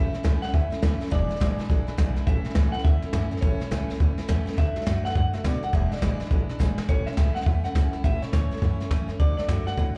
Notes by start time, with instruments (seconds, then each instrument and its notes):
Already playing: steel-string acoustic guitar A2 E3 A3 C#4 E4, clean electric guitar E5
0.13 steel-string acoustic guitar A3 C#4 E4, muted upright bass stroke, snare
0.23 upright bass C#2, steel-string acoustic guitar A2 E3 A3 C#4 E4, kick, snare, hi-hat pedal
0.42 steel-string acoustic guitar A3 C#4 E4, clean electric guitar F#5, muted upright bass stroke, snare
0.48 steel-string acoustic guitar E3, snare
0.53 upright bass D2, steel-string acoustic guitar A3 C#4 E4, clean electric guitar E5, kick, snare
0.70 steel-string acoustic guitar A3 C#4 E4, muted upright bass stroke, snare
0.82 upright bass D2, steel-string acoustic guitar A2 E3 A3 C#4 E4, kick, snare, hi-hat pedal
0.99 steel-string acoustic guitar A3 C#4 E4, muted upright bass stroke, snare
1.06 steel-string acoustic guitar E2, snare
1.11 upright bass E1, steel-string acoustic guitar B2 E3 G#3 D4 E4, clean electric guitar D5, kick, snare
1.29 steel-string acoustic guitar E3 G#3 D4 E4, muted upright bass stroke, snare
1.36 steel-string acoustic guitar E2, snare
1.40 upright bass G#1, steel-string acoustic guitar B2 E3 G#3 D4 E4, kick, snare, hi-hat pedal
1.58 steel-string acoustic guitar E3 G#3 D4 E4, muted upright bass stroke, snare
1.64 snare
1.69 upright bass A1, steel-string acoustic guitar E3 G#3 D4 E4, kick, snare
1.87 steel-string acoustic guitar E3 G#3 D4 E4, muted upright bass stroke, snare
1.97 upright bass B1, steel-string acoustic guitar E2 B2 E3 G#3 D4 E4, kick, snare, hi-hat pedal
2.16 steel-string acoustic guitar E3 G#3 D4 E4, muted upright bass stroke, snare
2.27 upright bass A1, steel-string acoustic guitar A2 E3 A3 C#4 E4, clean electric guitar E5, kick, snare
2.44 steel-string acoustic guitar A3 C#4 E4, muted upright bass stroke, snare
2.50 snare
2.55 upright bass C#2, steel-string acoustic guitar A2 E3 A3 C#4 E4, kick, snare, hi-hat pedal
2.72 steel-string acoustic guitar A3 C#4 E4, clean electric guitar F#5, muted upright bass stroke, snare
2.79 snare
2.84 upright bass D2, steel-string acoustic guitar E3 A3 C#4 E4, clean electric guitar E5, kick, snare
3.02 steel-string acoustic guitar A3 C#4 E4, muted upright bass stroke, snare
3.13 upright bass F#2, steel-string acoustic guitar A2 E3 A3 C#4 E4, kick, snare, hi-hat pedal
3.31 steel-string acoustic guitar A3 C#4 E4, muted upright bass stroke, snare
3.37 snare
3.41 upright bass A1, steel-string acoustic guitar A2 E3 A3 C#4 E4, clean electric guitar C#5, kick, snare
3.60 steel-string acoustic guitar A3 C#4 E4, muted upright bass stroke, snare
3.71 upright bass C#2, steel-string acoustic guitar A2 E3 A3 C#4 E4, kick, snare, hi-hat pedal
3.90 steel-string acoustic guitar A3 C#4 E4, muted upright bass stroke, snare
3.95 snare
4.00 upright bass D2, steel-string acoustic guitar E3 A3 C#4 E4, kick, snare
4.18 steel-string acoustic guitar A3 C#4 E4, muted upright bass stroke, snare
4.28 upright bass E2, steel-string acoustic guitar A2 E3 A3 C#4 E4, kick, snare, hi-hat pedal
4.46 steel-string acoustic guitar A3 C#4 E4, muted upright bass stroke, snare
4.52 snare
4.57 upright bass D2, steel-string acoustic guitar D3 A3 D4 F#4, clean electric guitar E5, kick, snare
4.76 steel-string acoustic guitar A3 D4 F#4, muted upright bass stroke, snare
4.81 snare
4.86 upright bass F#2, steel-string acoustic guitar D3 A3 D4 F#4, kick, snare, hi-hat pedal
5.05 steel-string acoustic guitar A3 D4 F#4, clean electric guitar F#5, muted upright bass stroke, snare
5.10 snare
5.15 upright bass F#2, steel-string acoustic guitar D3 A3 D4 F#4, clean electric guitar F#5, kick, snare
5.33 steel-string acoustic guitar A3 D4 F#4, clean electric guitar E5, muted upright bass stroke, snare
5.44 upright bass B2, steel-string acoustic guitar D3 A3 D4 F#4, clean electric guitar D5, kick, snare, hi-hat pedal
5.62 steel-string acoustic guitar A3 D4 F#4, clean electric guitar F#5, muted upright bass stroke, snare
5.73 upright bass E1, steel-string acoustic guitar E2 B2 E3 G#3 D4 E4, clean electric guitar E5, kick, snare
5.91 steel-string acoustic guitar E3 G#3 D4 E4, clean electric guitar D5, muted upright bass stroke, snare
5.97 snare
6.02 upright bass G#1, steel-string acoustic guitar E2 B2 E3 G#3 D4 E4, kick, snare, hi-hat pedal
6.20 steel-string acoustic guitar E3 G#3 D4 E4, muted upright bass stroke, snare
6.25 snare
6.31 upright bass A1, steel-string acoustic guitar E3 G#3 D4 E4, kick, snare
6.49 steel-string acoustic guitar E3 G#3 D4 E4, muted upright bass stroke, snare
6.59 upright bass G#1, steel-string acoustic guitar E2 B2 E3 G#3 D4 E4, kick, snare, hi-hat pedal
6.78 steel-string acoustic guitar E3 G#3 D4 E4, muted upright bass stroke, snare
6.88 upright bass A1, steel-string acoustic guitar A2 E3 A3 C#4 E4, clean electric guitar C#5, kick, snare
7.06 steel-string acoustic guitar A3 C#4 E4, clean electric guitar E5, muted upright bass stroke, snare
7.12 snare
7.17 upright bass C#2, steel-string acoustic guitar A2 E3 A3 C#4 E4, kick, snare, hi-hat pedal
7.35 steel-string acoustic guitar A3 C#4 E4, clean electric guitar F#5, snare
7.41 snare
7.46 upright bass E2, steel-string acoustic guitar E3 A3 C#4 E4, clean electric guitar E5, kick, snare
7.64 steel-string acoustic guitar A3 C#4 E4, clean electric guitar F#5, muted upright bass stroke, snare
7.75 upright bass C#2, steel-string acoustic guitar A2 E3 A3 C#4 E4, kick, snare, hi-hat pedal
7.93 steel-string acoustic guitar A3 C#4 E4, snare
8.04 upright bass A1, steel-string acoustic guitar A2 E3 A3 C#4 E4, clean electric guitar E5, kick, snare
8.22 steel-string acoustic guitar A3 C#4 E4, clean electric guitar C#5, muted upright bass stroke, snare
8.33 upright bass D2, steel-string acoustic guitar A2 E3 A3 C#4 E4, clean electric guitar C#5, kick, snare, hi-hat pedal
8.51 steel-string acoustic guitar A3 C#4 E4, muted upright bass stroke, snare
8.57 snare
8.62 upright bass F#2, steel-string acoustic guitar E3 A3 C#4 E4, kick, snare
8.80 steel-string acoustic guitar A3 C#4 E4, muted upright bass stroke, snare
8.90 upright bass F#2, steel-string acoustic guitar A2 E3 A3 C#4 E4, kick, snare, hi-hat pedal
9.08 upright bass F#2, steel-string acoustic guitar A3 C#4 E4, snare
9.19 upright bass D2, steel-string acoustic guitar D3 A3 D4 F#4, clean electric guitar D5, kick, snare
9.37 steel-string acoustic guitar A3 D4 F#4, clean electric guitar D5, muted upright bass stroke, snare
9.48 upright bass F#2, steel-string acoustic guitar D3 A3 D4 F#4, kick, snare, hi-hat pedal
9.66 steel-string acoustic guitar A3 D4 F#4, clean electric guitar F#5, muted upright bass stroke, snare
9.77 upright bass A2, steel-string acoustic guitar D3 A3 D4 F#4, kick, snare